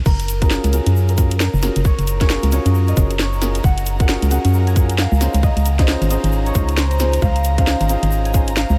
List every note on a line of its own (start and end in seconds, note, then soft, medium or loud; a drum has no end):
0.06 0.59 F#1 loud
0.06 0.42 A#4 loud
0.06 8.78 A#5 medium
0.06 kick loud
0.06 crash medium
0.06 shaker medium
0.20 closed hi-hat medium
0.20 shaker soft
0.28 open hi-hat loud
0.28 shaker medium
0.42 0.71 C#4 medium
0.42 0.71 F4 medium
0.42 0.71 F#4 medium
0.42 0.71 G#4 medium
0.42 0.71 A#4 medium
0.42 0.73 A#4 loud
0.42 kick loud
0.42 closed hi-hat medium
0.42 shaker soft
0.50 snare loud
0.50 shaker medium
0.64 0.80 C#2 medium
0.64 snare soft
0.64 closed hi-hat medium
0.64 shaker soft
0.73 1.16 C#4 medium
0.73 1.16 F4 medium
0.73 1.16 F#4 medium
0.73 1.16 G#4 medium
0.73 1.09 A#4 medium
0.73 1.16 A#4 medium
0.73 open hi-hat loud
0.73 shaker medium
0.86 1.49 F#2 medium
0.86 closed hi-hat medium
0.86 shaker soft
0.96 shaker soft
1.08 1.40 A#4 medium
1.08 closed hi-hat soft
1.08 shaker soft
1.18 1.30 C#4 medium
1.18 1.30 F4 medium
1.18 1.30 F#4 medium
1.18 1.30 G#4 medium
1.18 1.30 A#4 loud
1.18 kick loud
1.18 open hi-hat loud
1.18 shaker loud
1.31 closed hi-hat medium
1.31 shaker soft
1.40 3.53 A#4 medium
1.40 snare loud
1.40 shaker medium
1.54 1.70 F#1 loud
1.54 shaker soft
1.62 1.75 C#4 medium
1.62 1.75 F4 medium
1.62 1.75 F#4 medium
1.62 1.75 G#4 medium
1.62 1.75 A#4 medium
1.62 snare medium
1.62 open hi-hat loud
1.62 shaker medium
1.76 1.92 F#1 medium
1.76 closed hi-hat medium
1.76 shaker soft
1.85 2.20 C#5 loud
1.85 kick loud
1.85 shaker medium
1.99 2.38 F#1 medium
1.99 closed hi-hat soft
1.99 shaker soft
2.07 open hi-hat loud
2.07 shaker medium
2.20 2.50 C#4 medium
2.20 2.50 F4 medium
2.20 2.50 F#4 medium
2.20 2.50 G#4 medium
2.20 2.50 A#4 medium
2.20 2.52 C#5 loud
2.20 kick loud
2.20 snare medium
2.20 closed hi-hat medium
2.20 shaker soft
2.30 snare loud
2.30 shaker soft
2.43 2.59 C#2 medium
2.43 snare soft
2.43 closed hi-hat medium
2.43 shaker soft
2.52 2.95 C#4 medium
2.52 2.95 F4 medium
2.52 2.95 F#4 medium
2.52 2.95 G#4 medium
2.52 2.95 A#4 loud
2.52 3.20 C#5 medium
2.52 open hi-hat medium
2.52 shaker medium
2.65 2.94 F#2 medium
2.65 closed hi-hat medium
2.65 shaker soft
2.75 shaker soft
2.88 4.67 D#5 medium
2.88 closed hi-hat soft
2.88 shaker soft
2.97 3.61 F#1 loud
2.97 3.09 C#4 medium
2.97 3.09 F4 medium
2.97 3.09 F#4 medium
2.97 3.09 G#4 medium
2.97 3.09 A#4 loud
2.97 kick loud
2.97 open hi-hat loud
2.97 shaker medium
3.10 closed hi-hat medium
3.10 shaker soft
3.19 5.11 C#5 medium
3.19 snare loud
3.19 shaker medium
3.33 shaker soft
3.42 3.54 C#4 medium
3.42 3.54 F4 medium
3.42 3.54 F#4 medium
3.42 3.54 G#4 medium
3.42 3.54 A#4 medium
3.42 snare medium
3.42 open hi-hat medium
3.42 shaker medium
3.55 closed hi-hat medium
3.55 shaker soft
3.64 4.17 F#1 loud
3.64 4.00 F#5 loud
3.64 kick loud
3.64 shaker medium
3.78 closed hi-hat soft
3.78 shaker soft
3.86 open hi-hat loud
3.86 shaker loud
3.99 4.29 C#4 medium
3.99 4.29 F4 medium
3.99 4.29 F#4 medium
3.99 4.29 G#4 medium
3.99 4.29 A#4 medium
3.99 4.31 F#5 medium
3.99 kick loud
3.99 closed hi-hat medium
3.99 shaker soft
4.08 snare loud
4.08 shaker medium
4.22 4.38 C#2 medium
4.22 snare soft
4.22 closed hi-hat medium
4.22 shaker soft
4.31 4.74 C#4 medium
4.31 4.74 F4 medium
4.31 4.74 F#4 medium
4.31 4.74 G#4 medium
4.31 4.74 A#4 medium
4.31 5.05 F#5 medium
4.31 open hi-hat medium
4.31 shaker loud
4.45 5.07 F#2 medium
4.45 closed hi-hat medium
4.45 shaker soft
4.54 shaker medium
4.67 6.17 G#5 medium
4.67 closed hi-hat soft
4.67 shaker soft
4.76 4.88 C#4 medium
4.76 4.88 F4 medium
4.76 4.88 F#4 medium
4.76 4.88 G#4 medium
4.76 4.88 A#4 loud
4.76 kick loud
4.76 open hi-hat loud
4.76 shaker medium
4.89 closed hi-hat medium
4.89 shaker soft
4.98 6.65 F5 medium
4.98 snare loud
4.98 shaker medium
5.12 5.28 C#2 loud
5.12 shaker soft
5.21 5.33 C#4 medium
5.21 5.33 D#4 medium
5.21 5.33 F4 medium
5.21 5.33 G#4 medium
5.21 5.33 C5 medium
5.21 snare medium
5.21 open hi-hat medium
5.21 shaker medium
5.34 5.50 C#2 medium
5.34 closed hi-hat medium
5.34 shaker soft
5.43 5.79 D#5 loud
5.43 kick loud
5.43 shaker medium
5.57 5.96 C#2 medium
5.57 closed hi-hat soft
5.57 shaker soft
5.66 open hi-hat loud
5.66 shaker loud
5.79 6.08 C#4 medium
5.79 6.08 D#4 medium
5.79 6.08 F4 medium
5.79 6.08 G#4 medium
5.79 6.08 C5 medium
5.79 6.10 D#5 medium
5.79 kick loud
5.79 snare medium
5.79 closed hi-hat medium
5.79 shaker soft
5.88 snare loud
5.88 shaker soft
6.01 6.18 G#1 medium
6.01 snare soft
6.01 closed hi-hat medium
6.01 shaker soft
6.10 6.53 C#4 medium
6.10 6.53 D#4 medium
6.10 6.53 F4 medium
6.10 6.53 G#4 medium
6.10 6.53 C5 medium
6.10 7.89 D#5 medium
6.10 open hi-hat medium
6.10 shaker medium
6.24 6.52 G#1 medium
6.24 closed hi-hat medium
6.24 shaker soft
6.32 shaker medium
6.46 6.84 C#5 medium
6.46 closed hi-hat soft
6.46 shaker soft
6.55 7.19 C#2 loud
6.55 6.67 C#4 medium
6.55 6.67 D#4 medium
6.55 6.67 F4 medium
6.55 6.67 G#4 medium
6.55 6.67 C5 loud
6.55 kick loud
6.55 open hi-hat medium
6.55 shaker loud
6.68 closed hi-hat medium
6.68 shaker soft
6.77 8.76 C5 medium
6.77 snare loud
6.77 shaker medium
6.91 closed hi-hat soft
6.91 shaker soft
6.99 7.12 C#4 medium
6.99 7.12 D#4 medium
6.99 7.12 F4 medium
6.99 7.12 G#4 medium
6.99 7.12 C5 medium
6.99 snare medium
6.99 open hi-hat medium
6.99 shaker medium
7.13 closed hi-hat medium
7.13 shaker soft
7.22 7.75 C#2 loud
7.22 7.58 F5 loud
7.22 kick loud
7.22 shaker soft
7.36 closed hi-hat soft
7.36 shaker soft
7.44 open hi-hat loud
7.44 shaker medium
7.58 7.87 C#4 medium
7.58 7.87 D#4 medium
7.58 7.87 F4 medium
7.58 7.87 G#4 medium
7.58 7.87 C5 medium
7.58 7.89 F5 medium
7.58 kick loud
7.58 closed hi-hat medium
7.58 shaker soft
7.67 snare loud
7.67 shaker medium
7.80 7.97 G#1 medium
7.80 snare soft
7.80 closed hi-hat medium
7.80 shaker soft
7.89 8.32 C#4 medium
7.89 8.32 D#4 medium
7.89 8.32 F4 medium
7.89 8.32 G#4 medium
7.89 8.32 C5 medium
7.89 8.56 F5 medium
7.89 open hi-hat medium
7.89 shaker loud
8.03 8.65 G#1 medium
8.03 closed hi-hat medium
8.03 shaker soft
8.11 shaker medium
8.25 8.78 G#5 medium
8.25 closed hi-hat soft
8.25 shaker soft
8.34 8.46 C#4 medium
8.34 8.46 D#4 medium
8.34 8.46 F4 medium
8.34 8.46 G#4 medium
8.34 8.46 C5 loud
8.34 kick loud
8.34 open hi-hat loud
8.34 shaker loud
8.48 closed hi-hat medium
8.48 shaker soft
8.56 8.78 F5 medium
8.56 snare loud
8.56 shaker medium
8.70 8.78 C#2 loud
8.70 shaker soft